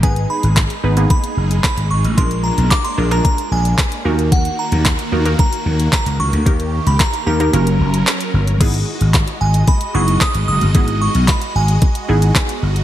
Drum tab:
CC |----------------|----------------|----------------|----------------|
HH |xx-xxx-xxx-xxx-x|xx-xxx-xxx-xxx-x|xx-xxx-xxx-xxx-x|xx-xxx-xxx-xxx-x|
CP |----x-------x---|----x-------x---|----x-------x---|----x-------x---|
BD |o---o---o---o---|o---o---o---o---|o---o---o---o---|o---o-----------|

CC |x---------------|----------------|
HH |xx-xxx-xxx-xxx-x|xx-xxx-xxx-xxx-x|
CP |----x-------x---|----x-------x---|
BD |o---o---o---o---|o---o---o---o---|